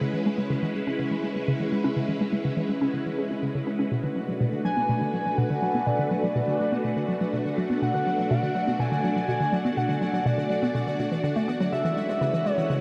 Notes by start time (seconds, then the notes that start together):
Already playing: G#3 C#4 E4 F#4 B4 F#5
0.01 C#3
0.14 E3
0.26 G#3
0.38 G#3
0.50 C#3
0.63 E3
0.75 G#3
0.87 C#4
0.99 C#3
1.11 E3
1.23 G#3
1.36 G#3
1.48 C#3
1.60 E3
1.72 G#3
1.84 C#4
1.97 C#3
2.09 E3
2.21 G#3
2.33 G#3
2.45 C#3
2.57 E3
2.69 G#3
2.81 C#4
2.94 C#3
3.06 E3
3.18 G#4
3.31 C#4
3.43 C#3
3.55 C#3
3.67 C#4
3.79 C#4
3.92 B2 A3 D4 F#4 B4 F#5
4.04 D3
4.16 F#3
4.28 F#3
4.41 B2
4.53 D3
4.65 F#3 G#5
4.77 B3
4.89 B2
5.01 D3
5.14 F#3
5.26 F#3
5.37 B2 F#5
5.50 D3
5.62 F#3
5.75 B3
5.86 B2 D5
5.99 D3
6.11 F#3
6.24 F#3
6.36 B2
6.48 D3
6.60 F#3
6.72 B3
6.85 B2
6.97 D3
7.09 F#3
7.21 F#3
7.33 B2
7.46 D3
7.58 F#3
7.70 B3
7.82 B2 D5 F#5
7.94 D3
8.07 F#3
8.19 F#3
8.31 B2 F#5
8.43 D3
8.55 F#3
8.67 B3
8.80 B2 G#5
8.92 D3
9.04 F#3
9.16 F#3
9.28 B2
9.40 D3
9.53 F#3
9.65 B3
9.77 B2 F#5
9.89 D3
10.01 F#3
10.13 F#3
10.26 B2 D5
10.38 D3
10.50 F#3
10.63 B3
10.75 B2
10.87 D3
10.99 B2
11.12 E3
11.24 D3
11.36 A3
11.48 B3
11.60 F#3
11.72 C#3 G#3 C#4 E4 B4 E5
11.85 E3
11.97 G#3
12.09 G#3
12.21 C#3
12.34 E3
12.46 G#3 C#5
12.58 E3
12.70 C#3